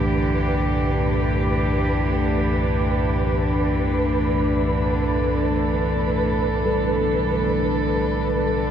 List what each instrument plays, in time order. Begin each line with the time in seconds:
Already playing: synth drone B1 F#2, singing bowl A2, cello section D3 E3 A3 D4 G4, synth texture B4
4.78 cello section A4
6.66 singing bowl G3 A4